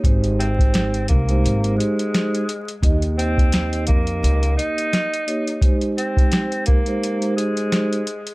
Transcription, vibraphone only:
X:1
M:4/4
L:1/16
Q:"Swing 16ths" 1/4=86
K:Ab
V:1 name="Vibraphone"
[A,EGc]6 z [A,EGc] [A,EGc]6 z2 | [B,EGe]12- [B,EGe] z [B,EGd]2 | [A,EGc]6 z [A,EGc] [A,EGc]6 z2 |]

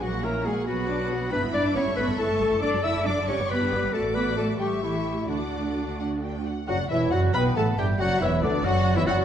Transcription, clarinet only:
X:1
M:6/8
L:1/16
Q:3/8=91
K:Bdor
V:1 name="Clarinet"
F2 ^A2 G2 F6 | [K:D] B2 d2 c2 B2 A4 | d2 e2 d2 c2 B4 | A2 B2 A2 G2 E4 |
D8- D2 z2 | F2 E2 F2 B2 A2 G2 | F2 E2 D2 F3 E F2 |]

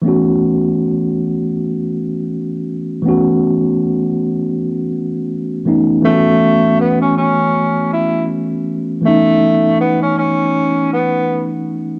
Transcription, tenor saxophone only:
X:1
M:4/4
L:1/16
Q:"Swing 16ths" 1/4=80
K:Bmix
V:1 name="Tenor saxophone"
z16 | z16 | A,4 B, C C4 E2 z4 | A,4 B, C C4 B,3 z3 |]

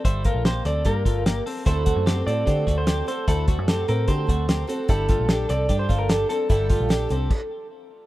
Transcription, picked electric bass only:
X:1
M:4/4
L:1/16
Q:1/4=149
K:Gdor
V:1 name="Picked electric bass" clef=bass
G,,,3 B,,,3 D,,2 G,,2 G,,,4 z2 | D,,3 ^F,,3 A,,2 D,2 D,,4 z2 | D,,3 ^F,,3 A,,2 D,2 D,,4 z2 | G,,,3 B,,,3 C,,2 G,,2 G,,,4 z2 |
G,,,3 B,,,3 C,,2 z8 |]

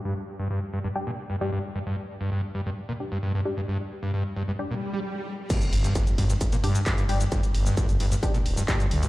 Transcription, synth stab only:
X:1
M:4/4
L:1/8
Q:1/4=132
K:Gm
V:1 name="Synth stab"
z4 [G,DG] z [G,DG] z | z4 z [G,DG] z [G,DG] | z4 [G,DG] z3 | z4 z [G,DG] z [G,DG] |
z4 [G,DG] z [G,DG] z |]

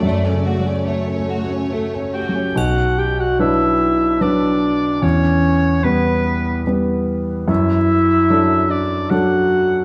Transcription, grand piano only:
X:1
M:3/4
L:1/8
Q:1/4=73
K:Bm
V:1 name="Grand piano"
(3F,, C, F, (3C A F (3A C F, | B,,,2 [F,DB]2 [F,DB]2 | E,,2 [G,B,B]2 [G,B,B]2 | F,,2 [F,DA]2 [F,DA]2 |]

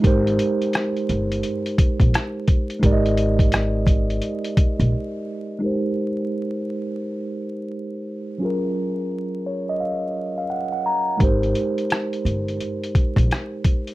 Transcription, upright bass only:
X:1
M:4/4
L:1/16
Q:"Swing 16ths" 1/4=86
K:Ab
V:1 name="Upright bass" clef=bass
A,,,2 z4 G,,,2 z3 B,,, z4 | A,,,8 z3 B,,, z4 | z16 | z16 |
A,,,2 z4 G,,,2 z3 B,,, z4 |]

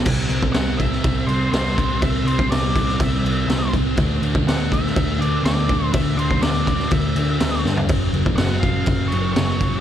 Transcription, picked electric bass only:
X:1
M:4/4
L:1/8
Q:1/4=122
K:Clyd
V:1 name="Picked electric bass" clef=bass
C,, C,, C,,2 C,, C,, C,, C,, | C,, C,, C,,2 C,, C,, C,, C,, | D,, D,, D,,2 D,, D,, D,, D,, | D,, D,, D,,2 D,, D,, D,, G,, |
F,,, F,,, F,,,2 F,,, F,,, F,,, F,,, |]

